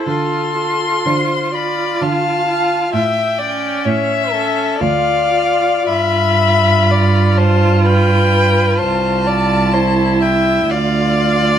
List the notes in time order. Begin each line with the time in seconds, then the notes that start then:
0.07 D3 F4 A4 C6
0.58 F4
1.06 D3 C5
1.54 F4 D5 B5
2.01 D3 F5 A5
2.48 F4
2.93 A2 E5 G5
3.39 C#4 D5
3.85 A2 C#5 E5
4.33 C#4 A4
4.79 D2 F4 D5 F5
5.33 F4
5.87 G2 F4 E5 B5
6.91 D5
7.37 C5 A5
7.85 B4 G5
8.79 C2 C5 A5
9.27 D5
9.74 E4 C5
10.22 E5 G5
10.70 D2 F4 D5 F5